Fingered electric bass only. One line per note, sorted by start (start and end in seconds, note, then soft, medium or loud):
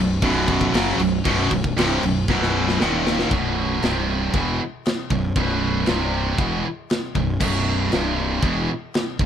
0.00 0.21 B0 medium
0.22 0.71 B0 medium
0.73 0.97 F#1 medium
0.98 1.23 B0 medium
1.25 1.50 B0 medium
1.51 1.75 B0 medium
1.77 2.01 C1 medium
2.03 2.27 B0 medium
2.29 2.77 B0 loud
2.81 3.29 D#1 medium
3.31 3.79 B0 medium
3.83 4.31 C1 loud
4.34 4.58 E1 loud
5.11 5.35 B0 medium
5.36 5.84 B0 medium
5.88 6.35 C1 medium
6.38 6.62 E1 loud
7.15 7.39 B0 medium
7.41 7.89 B0 medium
7.93 8.40 C1 medium
8.43 8.67 E1 loud
9.19 9.26 B0 medium